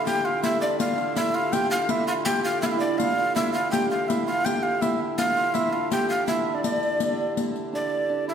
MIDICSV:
0, 0, Header, 1, 5, 480
1, 0, Start_track
1, 0, Key_signature, -1, "minor"
1, 0, Tempo, 365186
1, 83, Time_signature, 3, 2, 24, 8
1, 10965, End_track
2, 0, Start_track
2, 0, Title_t, "Recorder"
2, 0, Program_c, 0, 74
2, 83, Note_on_c, 0, 79, 106
2, 332, Note_on_c, 0, 77, 95
2, 352, Note_off_c, 0, 79, 0
2, 562, Note_off_c, 0, 77, 0
2, 569, Note_on_c, 0, 76, 97
2, 792, Note_off_c, 0, 76, 0
2, 806, Note_on_c, 0, 74, 84
2, 1030, Note_off_c, 0, 74, 0
2, 1045, Note_on_c, 0, 77, 100
2, 1494, Note_off_c, 0, 77, 0
2, 1528, Note_on_c, 0, 76, 99
2, 1768, Note_on_c, 0, 77, 94
2, 1788, Note_off_c, 0, 76, 0
2, 2006, Note_on_c, 0, 79, 102
2, 2026, Note_off_c, 0, 77, 0
2, 2238, Note_off_c, 0, 79, 0
2, 2246, Note_on_c, 0, 77, 91
2, 2502, Note_on_c, 0, 76, 89
2, 2522, Note_off_c, 0, 77, 0
2, 2718, Note_off_c, 0, 76, 0
2, 2725, Note_on_c, 0, 77, 97
2, 2804, Note_off_c, 0, 77, 0
2, 2959, Note_on_c, 0, 79, 104
2, 3190, Note_off_c, 0, 79, 0
2, 3212, Note_on_c, 0, 77, 85
2, 3437, Note_off_c, 0, 77, 0
2, 3442, Note_on_c, 0, 76, 87
2, 3495, Note_on_c, 0, 77, 74
2, 3515, Note_off_c, 0, 76, 0
2, 3569, Note_on_c, 0, 76, 86
2, 3589, Note_off_c, 0, 77, 0
2, 3669, Note_off_c, 0, 76, 0
2, 3677, Note_on_c, 0, 74, 82
2, 3918, Note_on_c, 0, 77, 94
2, 3938, Note_off_c, 0, 74, 0
2, 4408, Note_off_c, 0, 77, 0
2, 4414, Note_on_c, 0, 76, 95
2, 4639, Note_off_c, 0, 76, 0
2, 4647, Note_on_c, 0, 77, 88
2, 4872, Note_off_c, 0, 77, 0
2, 4880, Note_on_c, 0, 79, 93
2, 5111, Note_off_c, 0, 79, 0
2, 5137, Note_on_c, 0, 77, 82
2, 5366, Note_on_c, 0, 76, 86
2, 5386, Note_off_c, 0, 77, 0
2, 5600, Note_off_c, 0, 76, 0
2, 5608, Note_on_c, 0, 77, 89
2, 5847, Note_on_c, 0, 79, 100
2, 5867, Note_off_c, 0, 77, 0
2, 6085, Note_on_c, 0, 77, 87
2, 6105, Note_off_c, 0, 79, 0
2, 6328, Note_on_c, 0, 76, 89
2, 6348, Note_off_c, 0, 77, 0
2, 6572, Note_off_c, 0, 76, 0
2, 6809, Note_on_c, 0, 77, 93
2, 7284, Note_on_c, 0, 76, 92
2, 7303, Note_off_c, 0, 77, 0
2, 7529, Note_on_c, 0, 77, 89
2, 7548, Note_off_c, 0, 76, 0
2, 7766, Note_off_c, 0, 77, 0
2, 7773, Note_on_c, 0, 79, 92
2, 7996, Note_off_c, 0, 79, 0
2, 8016, Note_on_c, 0, 77, 81
2, 8237, Note_off_c, 0, 77, 0
2, 8245, Note_on_c, 0, 76, 91
2, 8604, Note_on_c, 0, 74, 68
2, 8624, Note_off_c, 0, 76, 0
2, 8720, Note_off_c, 0, 74, 0
2, 8728, Note_on_c, 0, 74, 78
2, 9633, Note_off_c, 0, 74, 0
2, 10188, Note_on_c, 0, 74, 82
2, 10843, Note_off_c, 0, 74, 0
2, 10894, Note_on_c, 0, 76, 73
2, 10965, Note_off_c, 0, 76, 0
2, 10965, End_track
3, 0, Start_track
3, 0, Title_t, "Hammered dulcimer"
3, 0, Program_c, 1, 15
3, 0, Note_on_c, 1, 62, 66
3, 0, Note_on_c, 1, 65, 81
3, 78, Note_on_c, 1, 67, 85
3, 307, Note_off_c, 1, 65, 0
3, 313, Note_on_c, 1, 65, 80
3, 561, Note_on_c, 1, 64, 80
3, 640, Note_off_c, 1, 65, 0
3, 806, Note_off_c, 1, 62, 0
3, 811, Note_on_c, 1, 62, 71
3, 1051, Note_on_c, 1, 65, 79
3, 1130, Note_off_c, 1, 64, 0
3, 1280, Note_off_c, 1, 65, 0
3, 1285, Note_on_c, 1, 65, 84
3, 1526, Note_on_c, 1, 64, 76
3, 1605, Note_off_c, 1, 65, 0
3, 1773, Note_on_c, 1, 65, 85
3, 1852, Note_off_c, 1, 64, 0
3, 2016, Note_off_c, 1, 67, 0
3, 2021, Note_on_c, 1, 67, 81
3, 2256, Note_off_c, 1, 65, 0
3, 2261, Note_on_c, 1, 65, 77
3, 2488, Note_on_c, 1, 64, 75
3, 2567, Note_off_c, 1, 65, 0
3, 2730, Note_on_c, 1, 65, 80
3, 2809, Note_off_c, 1, 64, 0
3, 2963, Note_off_c, 1, 67, 0
3, 2969, Note_on_c, 1, 67, 84
3, 3208, Note_off_c, 1, 65, 0
3, 3213, Note_on_c, 1, 65, 82
3, 3450, Note_on_c, 1, 64, 69
3, 3529, Note_off_c, 1, 65, 0
3, 3588, Note_off_c, 1, 64, 0
3, 3593, Note_on_c, 1, 64, 72
3, 3692, Note_off_c, 1, 62, 0
3, 3697, Note_on_c, 1, 62, 64
3, 3933, Note_on_c, 1, 65, 77
3, 4012, Note_off_c, 1, 64, 0
3, 4174, Note_off_c, 1, 65, 0
3, 4179, Note_on_c, 1, 65, 76
3, 4411, Note_on_c, 1, 64, 73
3, 4490, Note_off_c, 1, 65, 0
3, 4660, Note_on_c, 1, 65, 78
3, 4739, Note_off_c, 1, 64, 0
3, 4898, Note_off_c, 1, 67, 0
3, 4904, Note_on_c, 1, 67, 83
3, 5137, Note_off_c, 1, 65, 0
3, 5142, Note_on_c, 1, 65, 69
3, 5379, Note_on_c, 1, 64, 71
3, 5458, Note_off_c, 1, 65, 0
3, 5617, Note_on_c, 1, 65, 78
3, 5696, Note_off_c, 1, 64, 0
3, 5847, Note_off_c, 1, 67, 0
3, 5852, Note_on_c, 1, 67, 79
3, 6327, Note_on_c, 1, 64, 69
3, 6406, Note_off_c, 1, 65, 0
3, 6813, Note_on_c, 1, 65, 75
3, 6892, Note_off_c, 1, 64, 0
3, 7051, Note_off_c, 1, 65, 0
3, 7056, Note_on_c, 1, 65, 76
3, 7280, Note_on_c, 1, 64, 73
3, 7359, Note_off_c, 1, 65, 0
3, 7536, Note_on_c, 1, 65, 75
3, 7615, Note_off_c, 1, 64, 0
3, 7767, Note_off_c, 1, 67, 0
3, 7773, Note_on_c, 1, 67, 78
3, 8251, Note_on_c, 1, 64, 71
3, 8330, Note_off_c, 1, 65, 0
3, 8599, Note_off_c, 1, 62, 0
3, 8604, Note_on_c, 1, 62, 66
3, 8721, Note_off_c, 1, 62, 0
3, 8726, Note_on_c, 1, 62, 62
3, 10152, Note_off_c, 1, 62, 0
3, 10157, Note_on_c, 1, 62, 66
3, 10633, Note_off_c, 1, 62, 0
3, 10638, Note_on_c, 1, 62, 65
3, 10875, Note_off_c, 1, 64, 0
3, 10880, Note_on_c, 1, 64, 65
3, 10965, Note_off_c, 1, 62, 0
3, 10965, Note_off_c, 1, 64, 0
3, 10965, Note_off_c, 1, 67, 0
3, 10965, End_track
4, 0, Start_track
4, 0, Title_t, "Hurdy-gurdy"
4, 0, Program_c, 2, 110
4, 0, Note_on_c, 2, 50, 64
4, 4412, Note_off_c, 2, 50, 0
4, 4412, Note_on_c, 2, 50, 67
4, 10168, Note_off_c, 2, 50, 0
4, 10168, Note_on_c, 2, 50, 62
4, 10965, Note_off_c, 2, 50, 0
4, 10965, End_track
5, 0, Start_track
5, 0, Title_t, "Riq"
5, 93, Note_on_c, 9, 54, 62
5, 224, Note_off_c, 9, 54, 0
5, 572, Note_on_c, 9, 54, 66
5, 704, Note_off_c, 9, 54, 0
5, 1050, Note_on_c, 9, 54, 66
5, 1181, Note_off_c, 9, 54, 0
5, 1285, Note_on_c, 9, 54, 21
5, 1417, Note_off_c, 9, 54, 0
5, 1531, Note_on_c, 9, 54, 66
5, 1662, Note_off_c, 9, 54, 0
5, 2010, Note_on_c, 9, 54, 71
5, 2142, Note_off_c, 9, 54, 0
5, 2483, Note_on_c, 9, 54, 65
5, 2615, Note_off_c, 9, 54, 0
5, 2728, Note_on_c, 9, 54, 19
5, 2859, Note_off_c, 9, 54, 0
5, 2971, Note_on_c, 9, 54, 62
5, 3103, Note_off_c, 9, 54, 0
5, 3458, Note_on_c, 9, 54, 62
5, 3589, Note_off_c, 9, 54, 0
5, 3938, Note_on_c, 9, 54, 67
5, 4070, Note_off_c, 9, 54, 0
5, 4421, Note_on_c, 9, 54, 62
5, 4552, Note_off_c, 9, 54, 0
5, 4905, Note_on_c, 9, 54, 69
5, 5037, Note_off_c, 9, 54, 0
5, 5387, Note_on_c, 9, 54, 67
5, 5519, Note_off_c, 9, 54, 0
5, 5626, Note_on_c, 9, 54, 22
5, 5757, Note_off_c, 9, 54, 0
5, 5862, Note_on_c, 9, 54, 75
5, 5993, Note_off_c, 9, 54, 0
5, 6338, Note_on_c, 9, 54, 75
5, 6469, Note_off_c, 9, 54, 0
5, 6812, Note_on_c, 9, 54, 69
5, 6944, Note_off_c, 9, 54, 0
5, 7054, Note_on_c, 9, 54, 21
5, 7186, Note_off_c, 9, 54, 0
5, 7292, Note_on_c, 9, 54, 65
5, 7423, Note_off_c, 9, 54, 0
5, 7776, Note_on_c, 9, 54, 68
5, 7907, Note_off_c, 9, 54, 0
5, 8251, Note_on_c, 9, 54, 65
5, 8383, Note_off_c, 9, 54, 0
5, 8731, Note_on_c, 9, 54, 61
5, 8862, Note_off_c, 9, 54, 0
5, 8973, Note_on_c, 9, 54, 19
5, 9104, Note_off_c, 9, 54, 0
5, 9205, Note_on_c, 9, 54, 65
5, 9336, Note_off_c, 9, 54, 0
5, 9691, Note_on_c, 9, 54, 61
5, 9822, Note_off_c, 9, 54, 0
5, 9932, Note_on_c, 9, 54, 21
5, 10064, Note_off_c, 9, 54, 0
5, 10965, End_track
0, 0, End_of_file